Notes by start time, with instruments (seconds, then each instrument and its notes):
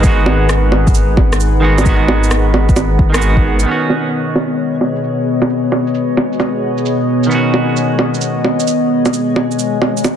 Already playing: detuned saw bass G#1, ambient pad D#4 G#4 B4 F#5
0.00 clean electric guitar D#3 G#3, kick, shaker
0.05 clean electric guitar B3 F#4
0.26 low bongo
0.49 cross-stick, shaker
0.72 low bongo
0.87 kick, shaker
0.95 shaker
1.17 kick, low bongo
1.33 cross-stick, shaker
1.40 shaker
1.60 clean electric guitar D#3 G#3 B3
1.64 clean electric guitar F#4
1.78 clean electric guitar D#3, low bongo, shaker
1.84 clean electric guitar G#3 B3, kick, shaker
1.89 clean electric guitar F#4
2.08 low bongo
2.24 shaker
2.31 cross-stick, shaker
2.54 low bongo
2.69 kick, shaker
2.76 low bongo, shaker
2.99 kick
3.10 clean electric guitar D#3 G#3
3.14 clean electric guitar B3 F#4, cross-stick, shaker
3.22 shaker
3.37 kick
3.60 clean electric guitar D#3, shaker
3.66 ambient pad B2 B3 C#5 D#5, synth texture G#3 G#4, clean electric guitar B3 C#4
3.71 clean electric guitar F#4
3.90 low bongo
4.13 shaker
4.36 low bongo
4.51 shaker
4.58 shaker
4.81 low bongo
4.96 shaker
5.04 shaker
5.42 low bongo, shaker
5.50 shaker
5.72 low bongo
5.87 shaker
5.94 shaker
6.17 low bongo
6.33 shaker
6.40 low bongo, shaker
6.78 shaker
6.86 shaker
7.23 clean electric guitar D#3, shaker
7.29 clean electric guitar B3 C#4, shaker
7.35 clean electric guitar F#4
7.54 low bongo
7.77 shaker
7.99 low bongo
8.14 shaker
8.21 shaker
8.44 low bongo
8.60 shaker
8.67 shaker
9.06 low bongo, shaker
9.13 shaker
9.36 low bongo
9.51 shaker
9.59 shaker
9.82 low bongo
9.97 shaker
10.04 low bongo, shaker